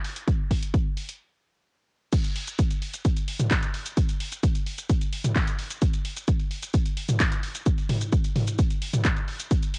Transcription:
0.05 open hi-hat medium
0.16 closed hi-hat medium
0.28 kick loud
0.28 closed hi-hat medium
0.51 kick medium
0.51 open hi-hat loud
0.63 closed hi-hat medium
0.74 kick loud
0.74 closed hi-hat medium
0.97 open hi-hat medium
1.09 closed hi-hat medium
2.12 kick loud
2.12 closed hi-hat loud
2.12 crash loud
2.12 shaker medium
2.24 closed hi-hat medium
2.24 shaker soft
2.36 open hi-hat loud
2.47 closed hi-hat medium
2.47 shaker medium
2.59 kick loud
2.59 closed hi-hat loud
2.59 shaker medium
2.70 closed hi-hat medium
2.70 shaker soft
2.82 open hi-hat medium
2.93 closed hi-hat medium
2.93 shaker medium
3.05 kick loud
3.05 closed hi-hat loud
3.05 shaker medium
3.17 closed hi-hat medium
3.17 shaker soft
3.28 open hi-hat loud
3.40 closed hi-hat medium
3.40 mid tom medium
3.40 shaker medium
3.51 kick loud
3.51 clap loud
3.51 closed hi-hat loud
3.51 shaker soft
3.63 closed hi-hat medium
3.63 shaker soft
3.74 open hi-hat medium
3.86 closed hi-hat medium
3.86 shaker medium
3.97 kick loud
3.97 closed hi-hat loud
3.97 shaker medium
4.09 closed hi-hat medium
4.09 shaker soft
4.20 open hi-hat loud
4.32 closed hi-hat medium
4.32 shaker medium
4.43 kick loud
4.43 closed hi-hat loud
4.43 shaker soft
4.55 closed hi-hat medium
4.55 shaker soft
4.66 open hi-hat loud
4.78 closed hi-hat medium
4.78 shaker medium
4.89 kick loud
4.89 closed hi-hat loud
4.89 shaker medium
5.01 closed hi-hat medium
5.01 shaker soft
5.12 open hi-hat loud
5.24 closed hi-hat medium
5.24 mid tom medium
5.24 shaker medium
5.36 kick loud
5.36 clap loud
5.36 closed hi-hat loud
5.36 shaker medium
5.47 closed hi-hat medium
5.47 shaker soft
5.59 open hi-hat loud
5.70 closed hi-hat medium
5.70 shaker medium
5.82 kick loud
5.82 closed hi-hat loud
5.82 shaker medium
5.93 closed hi-hat medium
5.93 shaker soft
6.05 open hi-hat loud
6.17 closed hi-hat medium
6.17 shaker medium
6.28 kick loud
6.28 closed hi-hat loud
6.28 shaker medium
6.40 closed hi-hat medium
6.40 shaker soft
6.51 open hi-hat loud
6.63 closed hi-hat medium
6.63 shaker medium
6.74 kick loud
6.74 closed hi-hat loud
6.74 shaker medium
6.86 closed hi-hat medium
6.86 shaker soft
6.97 open hi-hat loud
7.09 closed hi-hat medium
7.09 mid tom medium
7.09 shaker medium
7.20 kick loud
7.20 clap loud
7.20 closed hi-hat medium
7.20 shaker medium
7.32 closed hi-hat medium
7.32 shaker soft
7.43 open hi-hat loud
7.55 closed hi-hat medium
7.55 shaker medium
7.66 kick loud
7.66 closed hi-hat loud
7.66 shaker medium
7.78 closed hi-hat medium
7.78 shaker soft
7.89 mid tom medium
7.89 open hi-hat loud
8.01 closed hi-hat medium
8.01 shaker medium
8.13 kick loud
8.13 closed hi-hat medium
8.13 shaker medium
8.24 closed hi-hat medium
8.24 shaker soft
8.36 mid tom medium
8.36 open hi-hat loud
8.47 closed hi-hat medium
8.47 shaker medium
8.59 kick loud
8.59 closed hi-hat medium
8.59 shaker medium
8.70 closed hi-hat medium
8.70 shaker soft
8.82 open hi-hat loud
8.93 closed hi-hat medium
8.93 mid tom loud
8.93 shaker medium
9.05 kick loud
9.05 clap loud
9.05 closed hi-hat medium
9.05 shaker medium
9.17 closed hi-hat medium
9.17 shaker soft
9.28 open hi-hat loud
9.40 closed hi-hat medium
9.40 shaker medium
9.51 kick loud
9.51 closed hi-hat medium
9.51 shaker medium
9.63 closed hi-hat soft
9.63 shaker soft
9.74 open hi-hat loud

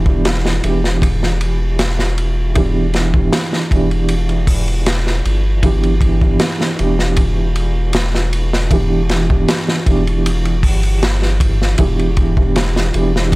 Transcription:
0.00 0.60 E1 loud
0.00 0.06 E3 medium
0.00 0.07 B3 medium
0.00 0.08 D4 medium
0.00 0.09 G4 loud
0.06 0.59 E3 medium
0.06 0.59 B3 medium
0.06 0.60 D4 medium
0.06 0.60 G4 medium
0.06 kick medium
0.25 snare loud
0.25 ride medium
0.46 snare medium
0.63 3.29 E1 medium
0.63 0.78 E3 medium
0.63 0.79 B3 medium
0.63 0.79 D4 medium
0.63 0.79 G4 medium
0.63 ride medium
0.84 snare soft
1.02 kick loud
1.02 ride medium
1.23 snare soft
1.41 ride medium
1.79 snare loud
1.79 ride medium
1.99 snare soft
2.18 ride medium
2.55 3.09 E3 medium
2.55 3.09 B3 medium
2.55 3.10 D4 medium
2.55 3.10 G4 medium
2.55 kick loud
2.55 ride medium
2.94 snare soft
2.94 ride medium
3.14 3.67 E3 medium
3.14 3.67 B3 medium
3.14 3.67 D4 medium
3.14 3.68 G4 medium
3.14 kick medium
3.33 snare loud
3.33 ride medium
3.53 snare soft
3.71 5.21 E1 medium
3.71 3.86 E3 medium
3.71 3.86 B3 medium
3.71 3.87 D4 medium
3.71 3.87 G4 medium
3.71 kick medium
3.71 ride medium
3.91 ride soft
4.08 ride medium
4.29 ride soft
4.47 kick medium
4.47 open hi-hat medium
4.68 ride soft
4.86 snare loud
4.86 ride medium
5.07 snare soft
5.25 6.37 G1 medium
5.25 ride medium
5.63 6.17 E3 medium
5.63 6.17 B3 medium
5.63 6.18 D4 medium
5.63 6.18 G4 loud
5.63 kick medium
5.63 ride medium
5.83 ride soft
6.01 kick medium
6.01 ride medium
6.21 6.74 E3 medium
6.21 6.75 B3 medium
6.21 6.75 D4 medium
6.21 6.75 G4 medium
6.21 kick medium
6.39 snare loud
6.39 ride medium
6.61 snare medium
6.78 9.45 E1 medium
6.78 6.94 E3 medium
6.78 6.94 B3 medium
6.78 6.94 D4 medium
6.78 6.95 G4 medium
6.78 ride medium
6.99 snare soft
7.16 kick loud
7.16 ride medium
7.56 ride medium
7.93 snare loud
7.93 ride medium
8.15 snare soft
8.33 ride medium
8.53 snare medium
8.71 9.25 E3 medium
8.71 9.25 B3 medium
8.71 9.25 D4 medium
8.71 9.26 G4 loud
8.71 kick loud
8.71 ride medium
9.09 snare medium
9.09 ride medium
9.29 9.82 E3 medium
9.29 9.82 B3 medium
9.29 9.83 D4 medium
9.29 9.83 G4 medium
9.29 kick medium
9.48 snare loud
9.48 ride medium
9.68 snare medium
9.86 10.65 E1 medium
9.86 10.01 E3 medium
9.86 10.02 B3 medium
9.86 10.02 D4 medium
9.86 10.02 G4 medium
9.86 kick medium
9.86 ride medium
10.07 ride soft
10.26 ride medium
10.45 ride soft
10.63 11.75 G1 medium
10.63 kick medium
10.63 open hi-hat medium
10.83 ride soft
11.03 snare medium
11.03 ride medium
11.22 snare soft
11.40 kick loud
11.40 ride medium
11.62 snare soft
11.78 12.91 E1 medium
11.78 12.32 E3 medium
11.78 12.33 B3 medium
11.78 12.33 D4 medium
11.78 12.33 G4 loud
11.78 kick loud
11.78 ride medium
11.99 ride soft
12.17 kick medium
12.17 ride medium
12.37 12.90 E3 medium
12.37 12.90 B3 medium
12.37 12.90 D4 medium
12.37 12.91 G4 medium
12.37 kick medium
12.56 snare loud
12.56 ride medium
12.76 snare medium
12.94 13.36 E1 medium
12.94 13.09 E3 medium
12.94 13.09 B3 medium
12.94 13.10 D4 medium
12.94 13.10 G4 loud
12.94 ride medium
13.16 snare soft
13.32 kick loud

